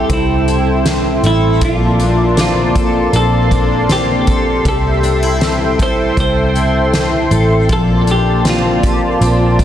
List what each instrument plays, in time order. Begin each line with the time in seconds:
Already playing: twelve-string acoustic guitar G3 E4 A4, clean electric guitar G4, analog synth pad A4 E5 G5 C6
0.10 picked electric bass C2, twelve-string acoustic guitar C4, clean electric guitar E4, kick, closed hi-hat
0.48 twelve-string acoustic guitar E4, closed hi-hat
0.85 twelve-string acoustic guitar C4, snare, closed hi-hat
1.23 picked electric bass A1, clean electric guitar E4, twelve-string acoustic guitar A4, closed hi-hat
1.61 picked electric bass A#1, twelve-string acoustic guitar F3, analog synth pad A#3 D5 A5, clean electric guitar F4, kick, closed hi-hat
2.00 twelve-string acoustic guitar D4, closed hi-hat
2.37 twelve-string acoustic guitar C4, clean electric guitar F4, snare, closed hi-hat
2.75 twelve-string acoustic guitar A4, kick, closed hi-hat
3.13 picked electric bass A#1, twelve-string acoustic guitar C4, clean electric guitar A4, closed hi-hat
3.51 twelve-string acoustic guitar D4, kick, closed hi-hat
3.89 twelve-string acoustic guitar C4, clean electric guitar G4, snare, closed hi-hat
4.27 twelve-string acoustic guitar A4, kick, closed hi-hat
4.65 picked electric bass C2, twelve-string acoustic guitar G3, analog synth pad A4 E5 G5, clean electric guitar A4, kick, closed hi-hat
5.03 twelve-string acoustic guitar D4, closed hi-hat
5.23 twelve-string acoustic guitar E4
5.41 twelve-string acoustic guitar C4, snare, closed hi-hat
5.79 twelve-string acoustic guitar A4, clean electric guitar C5, kick, closed hi-hat
6.17 picked electric bass C2, twelve-string acoustic guitar C4, clean electric guitar C5, kick, closed hi-hat
6.55 twelve-string acoustic guitar E4, closed hi-hat
6.93 twelve-string acoustic guitar C4, snare, closed hi-hat
7.31 picked electric bass A1, twelve-string acoustic guitar A4, closed hi-hat
7.69 picked electric bass A#1, twelve-string acoustic guitar F3, analog synth pad A#3 D5 A5, clean electric guitar A4, kick, closed hi-hat
8.07 twelve-string acoustic guitar D4, clean electric guitar G4, closed hi-hat
8.45 twelve-string acoustic guitar C4, snare, closed hi-hat
8.49 clean electric guitar F4
8.83 twelve-string acoustic guitar G4, kick, closed hi-hat
9.21 picked electric bass A#1, twelve-string acoustic guitar C4, closed hi-hat
9.59 twelve-string acoustic guitar D4, kick, closed hi-hat